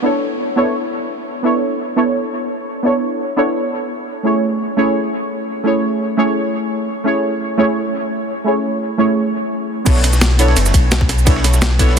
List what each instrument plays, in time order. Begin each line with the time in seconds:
Already playing: synth stab B3 D4 E4 A4 C#5
0.02 synth stab B3 D4 E4 A4 C#5
0.56 synth stab B3 D4 E4 A4 C#5
1.43 synth stab B3 D4 E4 A4 C#5
1.96 synth stab B3 D4 E4 A4 C#5
2.83 synth stab B3 D4 E4 A4 C#5
3.36 synth stab B3 D4 E4 A4 C#5
4.23 synth stab A3 C#4 E4 G#4 C#5
4.77 synth stab A3 C#4 E4 G#4 C#5
5.63 synth stab A3 C#4 E4 G#4 C#5
6.17 synth stab A3 C#4 E4 G#4 C#5
7.04 synth stab A3 C#4 E4 G#4 C#5
7.57 synth stab A3 C#4 E4 G#4 C#5
8.44 synth stab A3 C#4 E4 G#4 C#5
8.98 synth stab A3 C#4 E4 G#4 C#5
9.85 sub bass B1, synth stab B3 D4 E4 A4 C#5, kick, closed hi-hat, crash, ride, shaker
9.96 snare
10.04 snare, closed hi-hat, ride, shaker
10.13 snare, shaker
10.21 snare, closed hi-hat, ride, shaker
10.31 ride
10.38 synth stab B3 D4 E4 A4 C#5, closed hi-hat, ride
10.48 snare
10.57 sub bass F#1, snare, closed hi-hat, ride, shaker
10.66 snare, shaker
10.74 sub bass B1, kick, closed hi-hat, ride, shaker
10.92 snare, closed hi-hat, ride, shaker
11.01 kick
11.09 snare, closed hi-hat, ride
11.19 shaker
11.25 synth stab B3 D4 E4 A4 C#5, kick, closed hi-hat, ride, shaker
11.36 snare
11.44 snare, closed hi-hat, ride, shaker
11.54 snare, shaker
11.62 snare, closed hi-hat, ride, shaker
11.78 synth stab B3 D4 E4 A4 C#5, kick, closed hi-hat, ride
11.89 snare